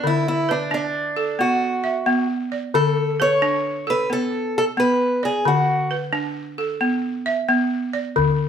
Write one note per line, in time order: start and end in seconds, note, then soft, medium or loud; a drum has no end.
0.00 0.49 D3 medium
0.00 0.27 D5 medium
0.07 0.27 E4 medium
0.28 0.51 E4 medium
0.49 0.73 D4 medium
0.49 1.17 B4 medium
0.71 1.17 D4 medium
0.71 1.43 D4 medium
1.16 1.62 A4 medium
1.39 1.85 B3 medium
1.39 2.27 F#4 medium
1.84 2.52 E5 medium
2.06 2.52 B3 medium
2.52 2.97 D5 medium
2.74 3.20 D3 medium
2.74 3.21 A4 medium
3.20 3.88 B4 medium
3.20 3.85 C#5 medium
3.42 3.88 D4 medium
3.87 4.33 A4 medium
3.87 4.12 B4 medium
4.10 4.55 B3 medium
4.10 4.57 A4 medium
4.58 4.64 A4 medium
4.77 5.23 B3 medium
4.77 5.25 B4 medium
5.23 5.47 G#4 medium
5.23 5.68 D5 medium
5.45 5.91 D3 medium
5.45 5.94 F#4 medium
5.91 6.59 B4 medium
6.13 6.58 D4 medium
6.58 7.04 A4 medium
6.81 7.26 B3 medium
7.26 7.94 E5 medium
7.49 7.94 B3 medium
7.93 8.39 D5 medium
8.16 8.49 D3 medium
8.16 djembe bass medium
8.28 djembe tone soft